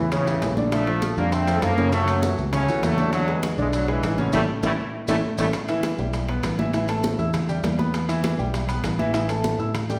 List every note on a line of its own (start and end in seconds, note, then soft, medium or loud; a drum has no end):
0.00 0.39 E2 loud
0.12 0.55 A2 medium
0.12 0.24 C#3 medium
0.12 0.55 C#3 loud
0.12 0.24 C#4 medium
0.12 0.25 C#5 medium
0.12 high bongo medium
0.12 high conga soft
0.12 low conga medium
0.12 high timbale medium
0.12 maracas medium
0.27 0.52 E3 medium
0.27 0.52 E4 medium
0.27 0.52 G4 medium
0.27 high bongo soft
0.27 high conga soft
0.27 low conga medium
0.27 maracas medium
0.41 1.12 A#1 medium
0.41 high bongo medium
0.41 low bongo medium
0.41 high conga medium
0.41 high timbale medium
0.41 low timbale medium
0.41 maracas medium
0.57 0.82 D3 medium
0.57 0.82 D4 medium
0.57 0.82 D5 medium
0.57 high bongo soft
0.57 high conga medium
0.57 maracas soft
0.72 1.15 F3 medium
0.72 1.15 A3 loud
0.72 high bongo medium
0.72 high conga soft
0.72 high timbale medium
0.72 maracas medium
0.87 1.12 F3 medium
0.87 1.12 F4 medium
0.87 1.13 A4 medium
0.87 high conga soft
0.87 high timbale medium
1.02 high bongo medium
1.02 high conga medium
1.02 high timbale medium
1.02 low timbale medium
1.02 maracas medium
1.17 1.59 F2 loud
1.17 1.42 D3 medium
1.17 1.33 G3 medium
1.17 1.33 A#3 loud
1.17 1.42 D4 medium
1.17 1.43 D5 medium
1.17 high conga soft
1.17 maracas soft
1.32 1.63 A3 medium
1.32 1.63 C4 loud
1.32 high bongo medium
1.32 high conga soft
1.32 high timbale medium
1.32 maracas medium
1.47 1.72 F3 medium
1.47 1.72 F4 medium
1.47 1.73 A4 medium
1.47 high conga soft
1.47 high timbale medium
1.47 maracas medium
1.62 2.32 F#2 medium
1.62 1.93 F3 medium
1.62 1.93 A#3 loud
1.62 high bongo medium
1.62 low bongo medium
1.62 high conga soft
1.62 high timbale medium
1.62 low timbale medium
1.62 maracas medium
1.77 1.90 C#3 medium
1.77 1.90 C#4 medium
1.77 1.90 C#5 medium
1.77 high conga medium
1.77 maracas soft
1.92 2.17 C#3 medium
1.92 2.35 F#3 medium
1.92 2.35 A3 loud
1.92 2.18 C#4 medium
1.92 2.18 C#5 medium
1.92 high bongo medium
1.92 high conga soft
1.92 high timbale medium
1.92 maracas medium
2.08 high conga soft
2.08 high timbale loud
2.08 maracas medium
2.22 2.47 E3 medium
2.22 2.48 E4 medium
2.22 2.48 F#4 medium
2.22 high bongo medium
2.22 high conga loud
2.22 low timbale medium
2.22 maracas medium
2.38 2.66 C#2 loud
2.38 high bongo soft
2.38 high conga soft
2.38 maracas soft
2.53 2.65 C#3 medium
2.53 2.82 A3 loud
2.53 2.65 C#4 medium
2.53 2.81 C#4 loud
2.53 2.65 C#5 medium
2.53 high bongo medium
2.53 high conga soft
2.53 low conga medium
2.53 high timbale medium
2.53 maracas medium
2.68 2.82 D2 medium
2.68 2.93 E3 medium
2.68 2.93 E4 medium
2.68 2.93 F#4 medium
2.68 high bongo soft
2.68 high conga soft
2.68 low conga medium
2.68 maracas medium
2.82 3.52 E2 loud
2.82 3.13 F#3 medium
2.82 3.14 A3 loud
2.82 high bongo medium
2.82 low bongo medium
2.82 high conga medium
2.82 high timbale medium
2.82 low timbale medium
2.82 maracas medium
2.98 3.23 D3 loud
2.98 3.23 D4 medium
2.98 3.23 D5 medium
2.98 high bongo soft
2.98 high conga medium
2.98 maracas soft
3.13 3.42 D3 medium
3.13 3.41 F#3 loud
3.13 high bongo medium
3.13 high conga soft
3.13 high timbale medium
3.13 maracas medium
3.28 3.53 G#3 medium
3.28 3.53 G#4 medium
3.28 3.53 B4 medium
3.28 high conga soft
3.28 high timbale medium
3.43 high bongo medium
3.43 high conga medium
3.43 high timbale loud
3.43 low timbale medium
3.43 maracas medium
3.58 4.00 B1 loud
3.58 3.83 D3 medium
3.58 3.73 E3 medium
3.58 3.73 G#3 loud
3.58 3.83 D4 medium
3.58 3.83 D5 medium
3.58 high conga soft
3.58 maracas soft
3.73 3.88 D3 medium
3.73 3.88 F#3 medium
3.73 high bongo medium
3.73 high conga soft
3.73 high timbale medium
3.73 maracas medium
3.88 4.17 C#3 medium
3.88 4.17 E3 loud
3.88 4.13 G#3 medium
3.88 4.13 G#4 medium
3.88 4.13 B4 medium
3.88 high conga soft
3.88 high timbale medium
4.03 4.31 A1 medium
4.03 high bongo medium
4.03 low bongo medium
4.03 high conga soft
4.03 high timbale medium
4.03 low timbale medium
4.03 maracas medium
4.18 4.34 B2 medium
4.18 4.30 C#3 medium
4.18 4.34 D3 medium
4.18 4.31 C#4 medium
4.18 4.31 C#5 medium
4.18 high conga medium
4.18 maracas soft
4.33 4.44 A1 medium
4.33 4.41 E3 medium
4.33 4.41 G3 loud
4.33 4.43 A3 medium
4.33 4.41 A3 loud
4.33 4.43 C#4 medium
4.33 4.43 E4 medium
4.33 low bongo loud
4.33 high conga loud
4.33 high timbale medium
4.33 maracas loud
4.63 4.74 A1 loud
4.63 4.72 E3 loud
4.63 4.71 G3 loud
4.63 4.73 A3 medium
4.63 4.72 A3 loud
4.63 4.73 C#4 medium
4.63 4.73 E4 medium
4.63 low bongo medium
4.63 high conga loud
4.63 high timbale loud
4.63 maracas loud
5.08 5.20 A1 medium
5.08 5.16 E3 medium
5.08 5.16 G3 medium
5.08 5.18 A3 loud
5.08 5.16 A3 medium
5.08 5.18 C#4 medium
5.08 5.18 E4 loud
5.08 low bongo loud
5.08 high conga loud
5.08 high timbale loud
5.08 maracas loud
5.38 5.50 A1 loud
5.38 5.47 E3 medium
5.38 5.46 G3 medium
5.38 5.48 A3 loud
5.38 5.47 A3 loud
5.38 5.48 C#4 medium
5.38 5.48 E4 loud
5.38 low bongo medium
5.38 high conga loud
5.38 high timbale loud
5.38 maracas loud
5.53 high bongo medium
5.53 high conga soft
5.53 high timbale medium
5.53 maracas medium
5.68 5.93 E3 medium
5.68 5.93 E4 medium
5.68 5.94 E5 medium
5.68 high conga soft
5.68 high timbale medium
5.68 maracas medium
5.83 high bongo medium
5.83 high conga medium
5.83 high timbale medium
5.83 low timbale medium
5.83 maracas medium
5.98 6.40 B1 medium
5.98 6.23 G3 medium
5.98 6.24 G4 medium
5.98 6.24 G5 medium
5.98 high conga soft
5.98 maracas soft
6.13 high bongo medium
6.13 high conga soft
6.13 high timbale medium
6.13 maracas medium
6.29 6.53 B3 medium
6.29 6.54 B4 medium
6.29 6.54 B5 medium
6.29 high conga soft
6.29 high timbale medium
6.43 7.13 A1 medium
6.43 high bongo medium
6.43 low bongo medium
6.43 high conga soft
6.43 high timbale loud
6.43 low timbale medium
6.43 maracas medium
6.58 6.71 E3 medium
6.58 6.71 E4 medium
6.58 6.71 E5 medium
6.58 high conga medium
6.58 maracas soft
6.73 6.86 E3 medium
6.73 6.86 E4 medium
6.73 6.86 E5 medium
6.73 high bongo medium
6.73 high conga soft
6.73 high timbale medium
6.73 maracas medium
6.88 7.13 A3 medium
6.88 7.13 A4 medium
6.88 7.14 A5 medium
6.88 high conga soft
6.88 high timbale medium
6.88 maracas medium
7.03 high bongo medium
7.03 high conga loud
7.03 low timbale medium
7.03 maracas medium
7.19 7.61 E2 medium
7.19 7.43 E4 medium
7.19 7.43 E5 medium
7.19 7.44 E6 medium
7.19 high bongo soft
7.19 high conga soft
7.19 maracas soft
7.34 high bongo medium
7.34 high conga soft
7.34 low conga medium
7.34 high timbale medium
7.34 maracas medium
7.49 7.74 G3 medium
7.49 7.74 G4 medium
7.49 7.74 G5 medium
7.49 high bongo soft
7.49 high conga soft
7.49 low conga medium
7.49 maracas medium
7.63 8.33 E2 medium
7.63 high bongo medium
7.63 low bongo medium
7.63 high conga medium
7.63 high timbale medium
7.63 low timbale medium
7.63 maracas medium
7.78 8.03 B3 medium
7.78 8.03 B4 medium
7.78 8.04 B5 medium
7.78 high bongo soft
7.78 high conga medium
7.78 maracas soft
7.94 high bongo medium
7.94 high conga soft
7.94 high timbale medium
7.94 maracas medium
8.09 8.33 E3 loud
8.09 8.34 E4 medium
8.09 8.34 E5 medium
8.09 high conga soft
8.09 high timbale medium
8.09 maracas medium
8.24 high bongo medium
8.24 high conga loud
8.24 high timbale medium
8.24 low timbale medium
8.24 maracas medium
8.39 8.81 B1 loud
8.39 8.63 G3 medium
8.39 8.64 G4 medium
8.39 8.64 G5 medium
8.39 high conga soft
8.39 maracas soft
8.54 high bongo medium
8.54 high conga soft
8.54 high timbale medium
8.54 maracas medium
8.68 8.93 B3 medium
8.68 8.93 B4 medium
8.68 8.94 B5 medium
8.68 high conga soft
8.68 high timbale medium
8.68 maracas medium
8.84 9.53 A1 medium
8.84 high bongo medium
8.84 low bongo medium
8.84 high conga soft
8.84 high timbale medium
8.84 low timbale medium
8.84 maracas medium
8.99 9.11 E3 loud
8.99 9.12 E4 medium
8.99 9.12 E5 medium
8.99 high conga medium
8.99 maracas soft
9.14 9.26 E3 medium
9.14 9.26 E4 medium
9.14 9.27 E5 medium
9.14 high bongo medium
9.14 high conga soft
9.14 high timbale medium
9.14 maracas medium
9.29 9.54 A3 medium
9.29 9.54 A4 medium
9.29 9.54 A5 medium
9.29 high conga soft
9.29 high timbale medium
9.29 maracas medium
9.44 high bongo medium
9.44 high conga loud
9.44 low timbale medium
9.44 maracas medium
9.59 9.99 A2 loud
9.59 9.84 E4 medium
9.59 9.84 E5 medium
9.59 9.84 E6 medium
9.59 high bongo soft
9.59 high conga soft
9.59 maracas soft
9.75 high bongo medium
9.75 high conga soft
9.75 low conga medium
9.75 high timbale medium
9.75 maracas medium
9.89 9.99 G3 medium
9.89 9.99 G4 medium
9.89 9.99 G5 medium
9.89 high bongo soft
9.89 high conga soft
9.89 low conga medium
9.89 high timbale medium
9.89 maracas medium